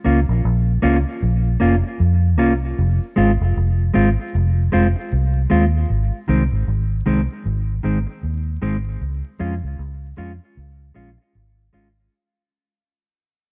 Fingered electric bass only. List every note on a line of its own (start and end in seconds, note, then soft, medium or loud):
0.06 0.25 C#2 medium
0.29 0.42 A#1 medium
0.45 0.78 A#1 loud
0.83 1.03 C#2 medium
1.22 1.55 A#1 loud
1.61 1.81 F1 medium
2.00 2.39 F2 loud
2.39 2.72 C2 loud
2.78 2.98 F1 loud
3.18 3.37 G#1 medium
3.41 3.54 F1 medium
3.57 3.90 F1 medium
3.96 4.15 G#1 medium
4.35 4.67 F1 loud
4.74 4.93 F1 medium
5.12 5.45 C2 medium
5.51 5.84 D#2 medium
5.90 6.09 G#1 loud
6.29 6.48 C2 medium
6.52 6.65 G#1 medium
6.68 7.01 G#1 medium
7.07 7.26 C2 medium
7.45 7.78 G#1 loud
7.84 8.04 G#1 medium
8.23 8.56 D#2 medium
8.62 8.95 G#1 medium
9.01 9.21 C#2 medium
9.40 9.60 F2 medium
9.63 9.76 C#2 medium
9.79 10.12 C#2 medium
10.18 10.37 F2 medium
10.57 10.90 C#2 loud
10.96 11.16 A#1 medium
11.35 11.68 G#1 medium
11.74 12.07 G#1 medium